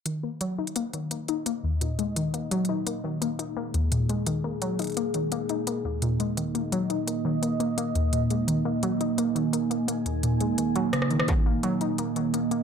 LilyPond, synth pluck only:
\new Staff \with { instrumentName = "Synth pluck" } { \clef bass \time 4/4 \key ees \minor \tempo 4 = 171 ees8 bes8 ges8 ees'8 bes8 ees8 bes8 ees'8 | bes8 ees,8 bes,8 aes8 ees8 bes8 ges8 ees'8 | bes8 ees8 bes8 ees'8 bes8 ees,8 bes,8 aes8 | ees8 bes8 ges8 ees'8 bes8 ees8 bes8 ees'8 |
bes8 ees,8 bes,8 aes8 ees8 bes8 ges8 ees'8 | bes8 ees8 bes8 bes8 bes8 ees,8 bes,8 aes8 | ees8 bes8 ges8 ees'8 bes8 ees8 bes8 bes8 | bes8 ees,8 bes,8 aes8 ees8 ges8 des8 ees8 |
ees8 bes8 ges8 ees'8 bes8 ees8 bes8 bes8 | }